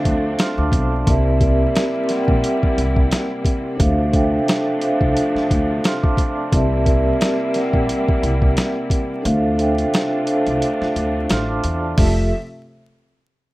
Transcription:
Already playing: string section F3 A3 C4 D4, vibraphone D4 A4 C5 E5 F5 G5
0.05 upright bass D2, kick, closed hi-hat
0.39 vibraphone C6 F6, snare, closed hi-hat
0.57 upright bass D2, vibraphone A5 D6
0.72 upright bass B1, kick, closed hi-hat
0.89 vibraphone D5 A5
1.05 upright bass C2, string section C3 G3 A#3 E4, vibraphone C4 G4 A#4 D5, kick, closed hi-hat
1.10 vibraphone E5
1.39 vibraphone C4 G4 A#4 D5, kick, closed hi-hat
1.43 vibraphone E5
1.75 snare, closed hi-hat
2.06 vibraphone C4 G4 A#4 D5, closed hi-hat
2.10 vibraphone F#5, snare
2.17 vibraphone G5
2.28 upright bass A#1, kick
2.44 closed hi-hat
2.63 muted upright bass stroke, kick
2.78 upright bass C2, closed hi-hat
2.96 kick
3.11 snare, closed hi-hat
3.45 kick, closed hi-hat
3.75 vibraphone D4 A4 C5 E5
3.80 upright bass D2, string section F3 A3 D4, vibraphone F5, kick, closed hi-hat
4.11 vibraphone D4 A4 C5 E5, kick, closed hi-hat
4.16 vibraphone G5
4.48 snare, closed hi-hat
4.79 vibraphone D4 A4 C5 E5, closed hi-hat
4.84 vibraphone F5
5.01 upright bass C2, kick
5.17 closed hi-hat
5.35 muted upright bass stroke, snare
5.51 upright bass D2, kick, closed hi-hat
5.84 vibraphone C6 F6, snare, closed hi-hat
6.03 vibraphone A5 D6, kick
6.17 kick, closed hi-hat
6.35 vibraphone D5 A5
6.51 upright bass C2, string section G3 A#3 E4, vibraphone C4 G4 A#4 D5, kick, closed hi-hat
6.55 vibraphone E5
6.84 vibraphone C4 G4 A#4 D5, kick, closed hi-hat
6.88 vibraphone E5
7.21 snare, closed hi-hat
7.51 vibraphone C4 G4 A#4 D5, closed hi-hat
7.56 vibraphone F#5, snare
7.62 vibraphone G5
7.73 upright bass A#1, kick
7.89 closed hi-hat
8.09 muted upright bass stroke, kick
8.23 upright bass C2, closed hi-hat
8.42 kick
8.57 snare, closed hi-hat
8.90 kick, closed hi-hat
9.21 vibraphone D4 A4 C5 E5
9.25 upright bass D2, string section C3 A3 D4 F4, vibraphone F5, closed hi-hat
9.57 vibraphone D4 A4 C5 E5, closed hi-hat
9.61 vibraphone G5
9.78 closed hi-hat
9.94 snare, closed hi-hat
10.24 vibraphone D4 A4 C5 E5, closed hi-hat
10.29 vibraphone F5
10.46 upright bass C2, closed hi-hat
10.62 closed hi-hat
10.80 muted upright bass stroke, snare
10.96 upright bass D2, closed hi-hat
11.30 upright bass A1, vibraphone C6 F6, snare, closed hi-hat
11.48 vibraphone A5 D6
11.64 upright bass E2, closed hi-hat
11.80 vibraphone D5 A5
11.98 upright bass F1, string section C3 F3 A3 E5, vibraphone F3 F4 G4 A4 E5, kick, floor tom, open hi-hat

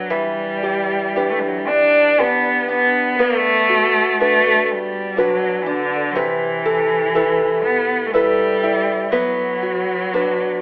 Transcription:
Already playing: cello F#3, nylon-string guitar B3 D4 F#4 B4
0.10 nylon-string guitar E3 B4, cello G3
0.63 nylon-string guitar G4
1.16 nylon-string guitar D4 G4 B4
1.30 cello A3
1.39 cello G3
1.48 cello F#3
1.58 cello G3
1.68 cello D4
2.18 cello B3, nylon-string guitar D4 G4 B4
2.69 cello B3, nylon-string guitar D4
3.19 cello A3, nylon-string guitar B3 B4
3.69 nylon-string guitar F#4
4.20 cello A3, nylon-string guitar D4 F#4 B4
4.66 cello A3
4.71 cello G3
5.17 cello F#3, nylon-string guitar D4 F#4 B4
5.62 cello E3
5.66 cello D3, nylon-string guitar D4
6.11 cello F#3
6.15 nylon-string guitar C3 B4, cello E3
6.66 nylon-string guitar A4
7.15 nylon-string guitar E4 A4 B4
7.63 cello B3
8.06 cello A3
8.12 cello G3, nylon-string guitar E4 A4 B4
8.63 nylon-string guitar E4
9.11 cello F#3, nylon-string guitar B3 B4
9.63 nylon-string guitar F#4
10.14 nylon-string guitar D4 F#4 B4

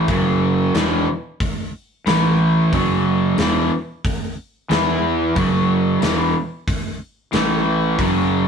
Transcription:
0.08 fingered electric bass F#1, overdriven electric guitar F#2 C#3 F#3, kick, open hi-hat
0.75 fingered electric bass E1, overdriven electric guitar E2 B2 E3, snare, open hi-hat
1.40 kick, open hi-hat
2.06 fingered electric bass A1, overdriven electric guitar A2 E3 A3, snare, open hi-hat
2.73 fingered electric bass F#1, overdriven electric guitar F#2 C#3 F#3, kick, open hi-hat
3.38 fingered electric bass E1, overdriven electric guitar E2 B2 E3, snare, open hi-hat
4.05 kick, open hi-hat
4.70 fingered electric bass E2, overdriven electric guitar E3 B3 E4, snare, open hi-hat
5.35 fingered electric bass F#1, overdriven electric guitar F#2 C#3 F#3, kick, open hi-hat
6.01 fingered electric bass E1, overdriven electric guitar E2 B2 E3, snare, open hi-hat
6.68 kick, open hi-hat
7.32 fingered electric bass A1, overdriven electric guitar A2 E3 A3, snare, open hi-hat
7.98 fingered electric bass F#1, overdriven electric guitar F#2 C#3 F#3, kick, open hi-hat

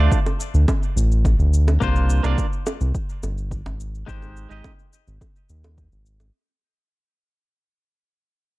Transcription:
Already playing: clean electric guitar A3 D4
0.00 clean electric guitar F4 D5
0.12 kick, cabasa
0.26 high bongo, cabasa
0.40 cabasa
0.54 analog synth bass D2, cabasa
0.68 kick, high bongo, cabasa
0.83 cabasa
0.96 analog synth bass A1, cabasa
1.12 cabasa
1.25 kick, high bongo, cabasa
1.39 analog synth bass D2, cabasa
1.54 cabasa
1.68 high bongo, cabasa
1.80 analog synth bass C2, clean electric guitar A#3 D4 F4 C5, kick, cabasa
1.96 cabasa
2.10 cabasa
2.23 analog synth bass C2, clean electric guitar A#3 D4 F4 D5, high bongo, cabasa
2.38 kick, cabasa
2.53 cabasa
2.66 high bongo, cabasa
2.81 analog synth bass C2, cabasa
2.95 kick, cabasa
3.09 cabasa
3.23 analog synth bass G1, high bongo, cabasa
3.38 cabasa
3.51 kick, cabasa
3.66 analog synth bass G#1, high bongo, cabasa
3.80 cabasa
3.95 cabasa
4.06 analog synth bass G#1, clean electric guitar G#3 D#4 G4 C5, kick, cabasa
4.22 high bongo, cabasa
4.37 cabasa
4.49 analog synth bass G#1, clean electric guitar G#3 D#4 G4 D#5, cabasa
4.64 kick, high bongo, cabasa
4.79 cabasa
4.93 cabasa
5.07 analog synth bass G#1, cabasa
5.21 kick, high bongo, cabasa
5.36 cabasa
5.49 analog synth bass D#2, cabasa
5.64 high bongo, cabasa
5.78 kick, cabasa
5.92 analog synth bass G#1, cabasa
6.06 cabasa
6.20 high bongo, cabasa

